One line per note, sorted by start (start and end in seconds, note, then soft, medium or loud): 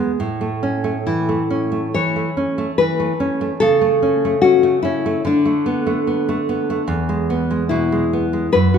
0.00 0.15 E2 soft
0.00 0.20 G#3 soft
0.00 0.10 B3 soft
0.20 1.91 A2 soft
0.41 0.75 A3 soft
0.63 0.97 C#4 soft
0.84 1.19 A3 soft
1.07 1.41 E3 soft
1.07 1.91 E4 medium
1.29 1.64 A3 soft
1.50 1.86 C#4 soft
1.72 2.07 A3 soft
1.94 2.29 E3 soft
1.94 2.75 C#5 medium
2.16 2.50 A3 soft
2.37 2.71 C#4 soft
2.58 2.91 A3 soft
2.78 3.12 E3 soft
2.78 3.56 B4 medium
3.00 3.32 A3 soft
3.20 3.53 C#4 soft
3.41 3.61 A3 soft
3.60 5.21 C#3 soft
3.60 4.39 A4 medium
3.81 4.14 A3 soft
4.02 4.35 C#4 soft
4.25 4.56 A3 soft
4.42 4.76 C#4 soft
4.42 4.80 F#4 medium
4.63 4.96 A3 soft
4.82 5.17 C#4 soft
4.82 5.21 E4 soft
5.06 5.26 A3 soft
5.25 6.84 D3 soft
5.25 6.44 D4 soft
5.45 5.78 A3 soft
5.66 5.99 B3 soft
5.87 6.19 A3 soft
6.07 6.40 B3 soft
6.29 6.60 A3 soft
6.49 6.81 B3 soft
6.70 6.89 A3 soft
6.88 8.49 E2 soft
7.09 7.41 G#3 soft
7.30 7.62 B3 soft
7.51 7.83 G#3 soft
7.69 8.03 B2 soft
7.69 8.49 E4 medium
7.92 8.25 G#3 soft
8.13 8.46 B3 soft
8.33 8.54 G#3 soft
8.53 8.78 F#2 soft
8.53 8.78 B4 medium
8.74 8.78 F#4 soft